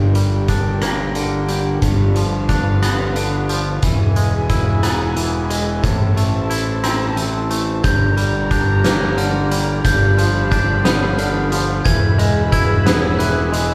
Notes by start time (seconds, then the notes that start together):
Already playing: G1 G2 D4 G4 A#4 G5
0.15 G3, closed hi-hat
0.48 D4, kick, closed hi-hat
0.82 A#3, cross-stick, closed hi-hat
1.15 D3, closed hi-hat
1.49 G3, closed hi-hat
1.82 G1 G2 B4 F5, kick, closed hi-hat
2.16 F3, closed hi-hat
2.49 D4, kick, closed hi-hat
2.82 B3, cross-stick, closed hi-hat
3.16 D3, closed hi-hat
3.49 F3, closed hi-hat
3.82 E1 E3 E4 G#4 B4 G#5, kick, closed hi-hat
4.16 G#3, closed hi-hat
4.50 E4, kick, closed hi-hat
4.83 B3, cross-stick, closed hi-hat
5.16 E3, closed hi-hat
5.50 G#3, closed hi-hat
5.83 A1 A2 A4 C5 A5, kick, closed hi-hat
6.17 A3, closed hi-hat
6.50 E4, closed hi-hat
6.84 C4, cross-stick, closed hi-hat
7.17 E3, closed hi-hat
7.50 A3, closed hi-hat
7.84 G1 G2 G4 A#4 D5 A#5 G6, kick, closed hi-hat
8.17 G3, closed hi-hat
8.51 D4 G6, kick, closed hi-hat
8.84 A#3, snare, closed hi-hat
9.18 D3 F6, closed hi-hat
9.51 G3, closed hi-hat
9.84 G1 G2 G4 F5 B5 G6, kick, closed hi-hat
10.18 F3, closed hi-hat
10.51 D4 G6, kick, closed hi-hat
10.85 B3, snare, closed hi-hat
11.18 D3 F6, closed hi-hat
11.52 F3, closed hi-hat
11.85 E1 E3 G#4 B4 E5 B5 G#6, kick, closed hi-hat
12.18 G#3, closed hi-hat
12.52 E4 G#6, kick, closed hi-hat
12.86 B3, snare, closed hi-hat
13.19 E3 F#6, closed hi-hat
13.52 G#3, closed hi-hat